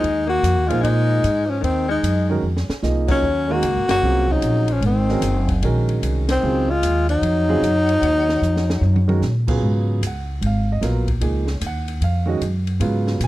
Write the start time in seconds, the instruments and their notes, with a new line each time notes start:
Already playing: alto saxophone G#3, tenor saxophone D#4
0.03 upright bass D#2, ride
0.27 alto saxophone A#3, tenor saxophone F#4
0.43 upright bass F2, hi-hat pedal, ride
0.56 upright bass D#2
0.66 upright bass A#1, grand piano F3, alto saxophone G#3, tenor saxophone F4
0.70 grand piano A#3 D#4 G#4 C5, ride
0.80 upright bass A#2, alto saxophone G#3, tenor saxophone D#4
0.84 ride
1.24 upright bass G#2, hi-hat pedal, ride
1.46 alto saxophone F3, tenor saxophone C#4
1.60 upright bass D#2, alto saxophone D#3, tenor saxophone C4, ride
1.88 alto saxophone G#3, tenor saxophone D#4
2.03 upright bass F#2, hi-hat pedal, ride
2.30 grand piano D#3 G#3 C#4 F#4 A#4
2.42 upright bass F2
2.57 snare
2.69 muted upright bass stroke, snare
2.83 upright bass C2, grand piano F3 A#3 D#4 G#4 D#5, snare, hi-hat pedal
3.08 alto saxophone F#3, tenor saxophone C#4, kick, crash
3.22 upright bass D#2
3.49 grand piano D#3 G#3 C#4 F#4 A#4, alto saxophone A#3, tenor saxophone F#4
3.63 upright bass C#2, hi-hat pedal, ride
3.76 upright bass G#1
3.88 upright bass F#1, alto saxophone A#3, tenor saxophone F#4, snare, ride
4.02 upright bass C2, grand piano F#3 C4 C#4 F4 G#4
4.28 alto saxophone F#3, tenor saxophone D#4, kick
4.42 upright bass A#1, hi-hat pedal, ride
4.68 alto saxophone F3, ride
4.73 tenor saxophone C#4
4.81 upright bass G#1, alto saxophone D#3, ride
4.86 tenor saxophone C4
5.09 grand piano D#3 G#3 C#4 F#4 A#4, snare
5.21 upright bass F#1, hi-hat pedal, ride
5.49 kick, ride
5.62 upright bass A#1, grand piano D#3 G#3 C#4 F#4 A#4, ride
5.89 ride
6.02 upright bass C2, hi-hat pedal, ride
6.29 alto saxophone D#3, tenor saxophone C4, snare, ride
6.43 upright bass C#2, grand piano C#3 F#3 C4 F4 G#4
6.70 alto saxophone G#3, tenor saxophone F4
6.83 upright bass D#2, hi-hat pedal, ride
7.09 alto saxophone F#3, tenor saxophone D#4, ride
7.21 upright bass F2, ride
7.48 grand piano C#3 F#3 C4 F4 G#4
7.61 upright bass F#2, hi-hat pedal, ride
7.89 ride
8.02 upright bass D#2, ride
8.29 snare
8.42 upright bass F2, hi-hat pedal
8.57 snare
8.70 snare
8.81 upright bass F#2, high tom
8.96 high tom
9.08 grand piano D#3 G#3 C#4 F#4 A#4, high tom
9.21 upright bass A#2, snare, hi-hat pedal
9.47 grand piano C#3 F#3 B3 F4 G#4, kick, crash
9.61 upright bass G#2
10.01 upright bass C#2, hi-hat pedal, ride
10.07 grand piano F#5
10.41 upright bass G#1, ride
10.46 grand piano F5
10.72 grand piano D#5
10.81 upright bass A#1, grand piano F#3 B3 F4 A#4, snare, hi-hat pedal, ride
11.07 kick, ride
11.21 upright bass C#2, grand piano F3 A#3 D#4 G#4, ride
11.47 snare
11.61 upright bass D#2, hi-hat pedal, ride
11.66 grand piano F#5
11.88 ride
12.01 upright bass F2, grand piano F5, ride
12.26 grand piano D#3 G#3 C#4 F#4 D#5
12.41 upright bass F#2, hi-hat pedal, ride
12.67 ride
12.80 upright bass G#2, grand piano C#3 F#3 B3 F4, ride
13.07 snare
13.20 upright bass A#2, grand piano G#5, hi-hat pedal, ride